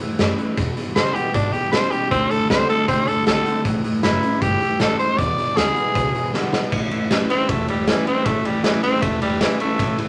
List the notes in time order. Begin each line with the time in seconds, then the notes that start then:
Already playing: E2
0.01 A2 E3
0.18 F#2 A2 E3 G3 C#4 E4, snare, closed hi-hat
0.38 A2 E3 C#4 E4, closed hi-hat
0.57 E2 B2, kick, closed hi-hat
0.77 E2 B2, muted upright bass stroke, closed hi-hat
0.95 E2 B2 C#3 D3 G#3 B3 E4 C5, snare, closed hi-hat
1.14 E2 B2 B3 E4 G4, muted upright bass stroke, closed hi-hat
1.34 E2 G#2 B2 D4, kick, closed hi-hat
1.52 E2 B2 G4, closed hi-hat
1.72 E2 B2 C#3 C5, snare, closed hi-hat
1.91 E2 B2 G4, muted upright bass stroke, closed hi-hat
2.11 D2 D3 A3 C4, kick, closed hi-hat
2.31 D3 A3 A4, muted upright bass stroke, closed hi-hat
2.49 C#2 D3 A3 B3 C4 F#4 C5, snare, closed hi-hat
2.69 D3 A3 C4 F#4 A4, closed hi-hat
2.88 C2 A2 D3 A3 C4, kick, closed hi-hat
3.08 D3 A3 A4, muted upright bass stroke, closed hi-hat
3.26 B1 D3 A3 C4 F#4 A4, snare, closed hi-hat
3.45 D3 A3 C4 F#4, closed hi-hat
3.65 A1 A2 E3, kick, closed hi-hat
3.84 A2 E3, muted upright bass stroke, closed hi-hat
4.03 F#1 A2 E3 F#3 G3 C#4 E4, snare, closed hi-hat
4.22 A2 E3 C#4 E4, closed hi-hat
4.41 G1 G2 A2 E3 G4, kick, closed hi-hat
4.61 A2 E3, closed hi-hat
4.80 A1 F#2 A2 E3 A4, snare, closed hi-hat
4.99 A2 E3 C5, closed hi-hat
5.18 E2 B2 D5, kick, closed hi-hat
5.38 E2 B2, closed hi-hat
5.57 D2 E2 C#3 D3 G#3 B3 E4 G#4, snare, closed hi-hat
5.76 E2 B2 B3 E4, muted upright bass stroke, closed hi-hat
5.95 C#2 E2 B2, kick, closed hi-hat
6.15 E2 B2, closed hi-hat
6.33 B1 E2 B2 D3 G#3 B3 E4, snare
6.53 E2 B2 B3 E4, muted upright bass stroke, snare
6.72 A1 A2 E3, kick, crash
6.91 A2 E3, ride
7.10 A2 E3 F#3 G3 C#4 E4, snare, ride
7.30 A2 E3 C4 C#4 E4, muted upright bass stroke, ride
7.49 E1 E2 A2 E3 A3, kick, ride
7.68 A2 E3 G3, ride
7.87 A2 E3 G3 C#4 E4, snare, ride
8.06 A2 E3 C4 C#4 E4, muted upright bass stroke, ride
8.26 A1 A2 E3 A3, kick, ride
8.45 A2 E3 G3, ride
8.64 A2 E3 F#3 G3 C#4 E4, snare, ride
8.83 A2 E3 C4 C#4 E4, muted upright bass stroke, ride
9.02 E1 A2 E3 A3, kick, ride
9.22 A2 E3 G3, ride
9.40 A2 E3 G3 C#4 E4, snare, ride
9.60 A2 E3 A3 C#4 E4, muted upright bass stroke, ride
9.79 A1 A2 E3, kick, ride
9.98 A2 E3, ride